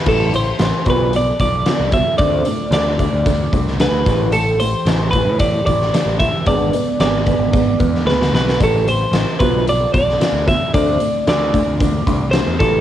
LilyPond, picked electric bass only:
\new Staff \with { instrumentName = "Picked electric bass" } { \clef bass \time 4/4 \key a \minor \tempo 4 = 112 a,,4 a,,16 r16 b,,4 b,,8 r16 c,8 r16 | d,8 r8 d,8. d,8. c,8. d,16 a,,8~ | a,,4 a,,8. a,8. a,,8 r16 a,,8 r16 | gis,,8 r8 gis,,8. gis,,8. e,8 d,8 b,,8 |
a,,4 a,,16 r16 b,,4 b,,8 r16 d,8 r16 | d,8 r8 d,8. d,8. c,8. e,16 a,,8 | }